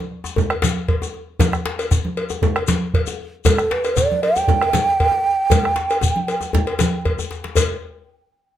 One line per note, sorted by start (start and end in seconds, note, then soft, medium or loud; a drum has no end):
0.00 high conga medium
0.24 djembe slap soft
0.24 djembe tone medium
0.24 shekere soft
0.36 bombo low loud
0.36 djembe bass medium
0.36 low conga medium
0.36 shekere soft
0.50 bombo rim medium
0.50 cowbell soft
0.50 djembe slap soft
0.62 djembe slap medium
0.62 djembe tone medium
0.62 high conga medium
0.62 shekere medium
0.88 bombo low loud
0.88 cowbell soft
0.88 djembe slap soft
1.02 djembe tone medium
1.02 shekere soft
1.14 djembe slap soft
1.39 bombo low loud
1.39 cowbell medium
1.39 djembe slap soft
1.39 high conga medium
1.39 djembe bass medium
1.39 low conga medium
1.39 shekere medium
1.53 bombo rim medium
1.53 djembe tone medium
1.53 shekere soft
1.66 bombo rim soft
1.66 djembe slap medium
1.66 high conga soft
1.79 bombo rim soft
1.79 cowbell medium
1.79 djembe slap soft
1.79 shekere soft
1.91 bombo rim soft
1.91 bombo low loud
1.91 djembe tone medium
1.91 shekere medium
2.05 high conga medium
2.17 cowbell medium
2.30 djembe slap soft
2.30 djembe tone medium
2.30 shekere soft
2.42 bombo low loud
2.42 djembe bass medium
2.42 low conga medium
2.42 shekere soft
2.56 bombo rim medium
2.56 cowbell medium
2.68 djembe slap medium
2.68 djembe tone medium
2.68 high conga medium
2.68 shekere medium
2.94 bombo low loud
2.94 cowbell medium
2.94 djembe slap soft
3.07 djembe tone medium
3.07 shekere soft
3.45 3.73 A4 loud
3.45 bombo low loud
3.45 cowbell medium
3.45 djembe slap soft
3.45 high conga medium
3.45 djembe bass medium
3.45 low conga medium
3.45 shekere medium
3.58 bombo rim medium
3.58 djembe tone medium
3.58 shekere soft
3.71 3.98 B4 loud
3.71 bombo rim soft
3.71 djembe slap medium
3.71 high conga soft
3.84 bombo rim soft
3.84 cowbell medium
3.84 djembe slap soft
3.84 shekere soft
3.96 4.22 D5 loud
3.96 bombo rim soft
3.96 bombo low loud
3.96 djembe tone medium
3.96 shekere medium
4.12 high conga medium
4.23 7.01 G5 loud
4.23 cowbell medium
4.36 djembe slap soft
4.36 djembe tone medium
4.36 shekere soft
4.48 bombo low loud
4.48 djembe bass medium
4.48 low conga medium
4.48 shekere soft
4.61 bombo rim medium
4.61 cowbell soft
4.61 djembe slap soft
4.73 djembe slap medium
4.73 djembe tone medium
4.73 high conga loud
4.73 shekere medium
4.99 bombo low medium
4.99 cowbell medium
4.99 djembe slap soft
5.12 djembe tone medium
5.25 djembe slap soft
5.50 bombo low medium
5.50 cowbell medium
5.50 high conga medium
5.50 djembe bass medium
5.50 low conga medium
5.50 shekere medium
5.64 bombo rim medium
5.64 djembe slap soft
5.64 djembe tone medium
5.76 djembe slap medium
5.76 shekere soft
5.89 cowbell medium
5.89 djembe slap soft
5.89 shekere soft
6.01 bombo low loud
6.01 djembe slap soft
6.01 djembe tone medium
6.01 high conga soft
6.01 shekere medium
6.16 high conga medium
6.28 cowbell soft
6.28 shekere soft
6.41 bombo rim soft
6.41 djembe slap soft
6.41 djembe tone medium
6.41 shekere soft
6.53 bombo rim soft
6.53 bombo low medium
6.53 high conga soft
6.53 djembe bass medium
6.53 low conga medium
6.53 shekere soft
6.67 cowbell medium
6.79 bombo rim soft
6.79 djembe slap medium
6.79 djembe tone medium
6.79 high conga medium
6.79 shekere medium
7.05 bombo low loud
7.05 cowbell medium
7.05 djembe bass soft
7.19 bombo rim soft
7.19 high conga soft
7.19 djembe bass medium
7.19 shekere soft
7.31 djembe slap medium
7.31 shekere soft
7.44 djembe slap medium
7.44 high conga soft
7.55 bombo low medium
7.55 cowbell medium
7.55 djembe bass medium
7.55 low conga medium
7.55 shekere medium